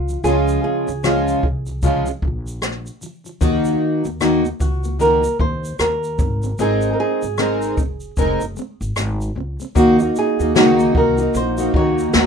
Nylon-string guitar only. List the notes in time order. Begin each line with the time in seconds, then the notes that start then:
Already playing: F4
0.24 G#4
0.64 G#4
4.61 F#4
5.01 A#4
5.40 C5
5.80 A#4
6.61 G#4
6.93 A#4
7.00 G#4
10.19 G#4
10.98 A#4
11.36 C5
11.76 C#5